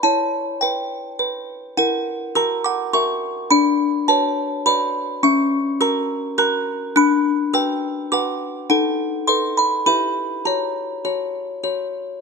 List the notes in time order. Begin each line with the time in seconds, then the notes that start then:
0.03 E4 C#5 A5
0.61 B4 G5
1.19 B4
1.77 E4 A#4 F#5
2.35 F#4 A#4 A#5 E6
2.64 F#5 D6
2.93 F#4 A#4 E5 C#6
3.50 D4 D5 B5
4.08 F#4 B4 C#5 A5
4.66 F#4 B4 D5 B5
5.23 C#4 E5 C#6
5.81 F#4 A#4 A#5 E6
6.38 F#4 A#4 A#5 F#6
6.96 D4 B5 F#6
7.53 F#4 B4 G5 E6
8.12 F#4 B4 F#5 D6
8.70 D#4 A4 F#5
9.27 A4 B4 D#5 C6
9.57 D#5 B5
9.86 E4 G4 B4 E5 B5
10.45 F#4 C#5 A#5
11.05 F#4 C#5
11.63 F#4 C#5